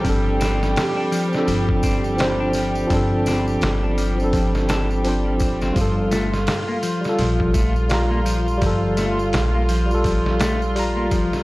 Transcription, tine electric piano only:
X:1
M:4/4
L:1/16
Q:"Swing 16ths" 1/4=84
K:Gm
V:1 name="Tine electric piano"
[F,CDA]6- [F,CDA] [F,CDA]4- [F,CDA] [F,CDc]4 | [F,CDA]6- [F,CDA] [F,CDA]4- [F,CDA] [F,CDc]4 | [G,FA]6- [G,FA] [G,FA]4- [G,FA] [G,Fb]4 | [G,FA]6- [G,FA] [G,FA]4- [G,FA] [G,Fb]4 |]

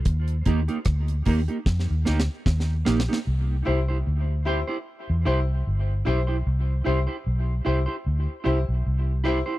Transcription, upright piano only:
X:1
M:4/4
L:1/8
Q:"Swing 16ths" 1/4=75
K:C
V:1 name="Upright piano"
z8 | z [EGc] z [EGc] z [EGc] z [EGc] | z [EGc] z [EGc] z [EGc] z [EGc] |]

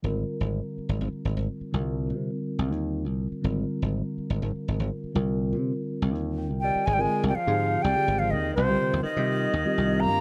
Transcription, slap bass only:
X:1
M:7/8
L:1/16
Q:1/4=123
K:Ablyd
V:1 name="Slap bass" clef=bass
A,,,2 z A,,,2 z2 A,,, A,,, z A,,, A,,, z2 | C,,3 C,2 z2 C,, E,,3 C,,2 z | A,,,2 z A,,,2 z2 A,,, A,,, z A,,, A,,, z2 | C,,3 C,2 z2 C,, E,,3 C,,2 z |
A,,,2 z C,, z A,,3 C,, z A,,,2 E,,2 | C,,2 z E,, z C,3 E,, z C,,2 G,,2 |]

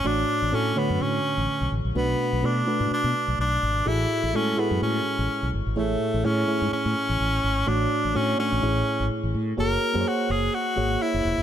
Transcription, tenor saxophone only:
X:1
M:4/4
L:1/8
Q:"Swing 16ths" 1/4=126
K:F#m
V:1 name="Tenor saxophone"
D2 C B, C3 z | B,2 D2 D2 D2 | E2 C B, C3 z | A,2 C2 C4 |
D2 C C3 z2 | ^A2 F G F2 E2 |]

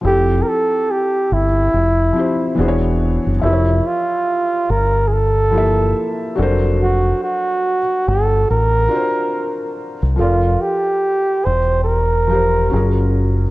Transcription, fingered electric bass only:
X:1
M:4/4
L:1/16
Q:"Swing 16ths" 1/4=71
K:F
V:1 name="Fingered electric bass" clef=bass
F,,,2 z4 G,,,2 F,,,2 z2 E,,,3 ^F,,, | F,,,2 z4 G,,,6 z2 F,,,2- | F,,,2 z4 G,,,2 A,,,2 z4 z C,, | F,,,2 z4 E,,,6 _G,,,4 |]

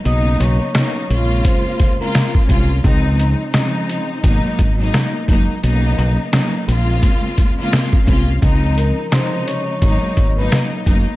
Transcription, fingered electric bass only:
X:1
M:4/4
L:1/16
Q:"Swing 16ths" 1/4=86
K:Db
V:1 name="Fingered electric bass" clef=bass
_C,,2 C,, z3 B,,,2 z6 =C,,2 | D,,3 z4 z A,,, z A,,,2 z2 G,,, z | _C,,2 C,, z3 B,,,2 z6 =C,,2 | D,,3 z4 z A,,, z A,,,2 z2 G,,, z |]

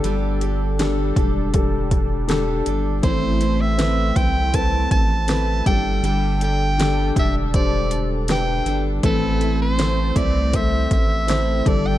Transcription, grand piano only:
X:1
M:4/4
L:1/8
Q:1/4=80
K:Ador
V:1 name="Grand piano"
[DGA]2 [DGA]2 [DGA]2 [DGA]2 | [CAc]2 [CAB]2 [CAB]2 [CAB] [DGA]- | [DGA]2 [DGA]2 [DGc]2 [DGB]2 | [CAB]2 [CAc]2 [CAc]2 [CAc] [DGA] |]
V:2 name="Grand piano" clef=bass
[G,,D,]2 z6 | [A,,E,]3 z4 [G,,D,]- | [G,,D,]2 z6 | [A,,E,]3 z4 [G,,D,] |]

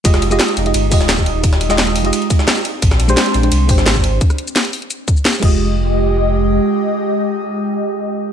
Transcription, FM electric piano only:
X:1
M:4/4
L:1/16
Q:1/4=173
K:Fdor
V:1 name="FM electric piano"
[A,FGe]3 [A,FGe]4 [A,FGe]3 [A,FGe]6- | [A,FGe]3 [A,FGe]4 [A,FGe]6- [A,FGe] z2 | z3 [A,DGc]4 [A,DGc]3 [A,DGc]6 | z12 z2 [A,FGe]2- |
[A,FGe]16- | [A,FGe]16 |]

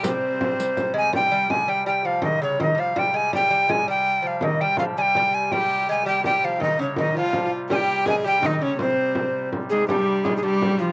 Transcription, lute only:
X:1
M:6/8
L:1/16
Q:3/8=110
K:Cphr
V:1 name="Lute" clef=bass
C,8- C,2 A,2 | G,2 G,2 A,2 G,2 G,2 F,2 | E,2 D,2 E,3/2 G,/2 F,2 G,2 A,2 | G,2 G,2 A,2 G,4 F,2 |
E,2 G,2 F,2 G,2 G,4 | G,4 A,2 G,2 G,2 F,2 | E,2 D,2 E,2 F,3/2 G,/2 F,2 z2 | G,4 A,2 G,2 E,2 D,2 |
C,8 z2 A,,2 | G,,4 A,,2 G,,6 |]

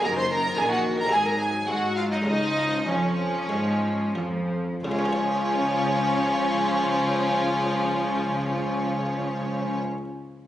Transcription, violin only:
X:1
M:4/4
L:1/16
Q:1/4=85
K:Db
V:1 name="Violin"
B c B2 A G2 B A B A2 G2 F E | E4 D8 z4 | F16- | F16 |]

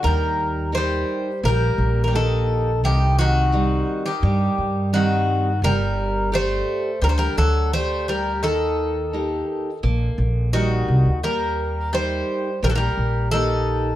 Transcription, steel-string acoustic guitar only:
X:1
M:4/4
L:1/8
Q:1/4=86
K:none
V:1 name="Steel-string acoustic guitar"
_E,2 [_EG_B]2 _B,2 [B,EG]2 | C,2 [G,C_E]2 G,2 [G,CE]2 | G,2 [GAd]2 D,2 [Gd]2 | _E,2 [_B,_EG]2 B,2 [G,E_B]2 |
_B,2 [_EG_B]2 B,2 [B,EG]2 |]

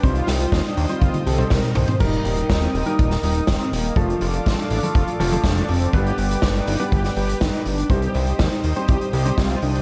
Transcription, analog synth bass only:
X:1
M:4/4
L:1/8
Q:1/4=122
K:Cdor
V:1 name="Analog synth bass" clef=bass
C,, C,, E,, E,, C,, C,, C,, C,, | E,,, E,,, E,,, E,,, E,,, E,,, E,,, E,,, | F,,, F,,, A,,, A,,, F,,, F,,, F,,, F,,, | G,,, G,,, G,,, G,,, G,,, G,,, G,,, G,,, |
C,, C,, E,, E,, C,, C,, C,, C,, |]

